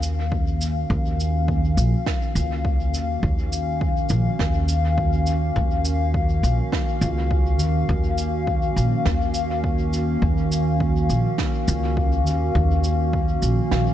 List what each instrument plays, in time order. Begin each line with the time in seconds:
Already playing: upright bass D#2, ambient pad D#3 A#3 C#4 F#4 F5
0.03 cabasa
0.32 kick
0.61 cabasa
0.90 upright bass D#2, kick
1.20 cabasa
1.48 kick
1.77 upright bass A#1, cabasa
2.06 kick, snare
2.35 upright bass C#2, cabasa
2.65 kick
2.94 upright bass D#2, cabasa
3.23 upright bass D#2, kick
3.53 cabasa
3.81 kick
4.09 upright bass A#1, cabasa
4.39 upright bass D#2, kick, snare
4.69 cabasa
4.98 kick
5.27 cabasa
5.56 upright bass D#2, kick
5.85 cabasa
6.14 kick
6.43 upright bass A#1, cabasa
6.72 kick, snare
7.01 upright bass C#2, cabasa
7.31 kick
7.59 upright bass D#2, cabasa
7.89 upright bass D#2, kick
8.18 cabasa
8.47 kick
8.76 upright bass A#1, cabasa
9.05 upright bass D#2, kick, snare
9.34 cabasa
9.64 kick
9.93 cabasa
10.22 upright bass D#2, kick
10.52 cabasa
10.80 kick
11.09 upright bass A#1, cabasa
11.38 kick, snare
11.68 upright bass C#2, cabasa
11.97 kick
12.26 upright bass D#2, cabasa
12.55 upright bass D#2, kick
12.84 cabasa
13.13 kick
13.42 upright bass A#1, cabasa
13.71 upright bass A#1, snare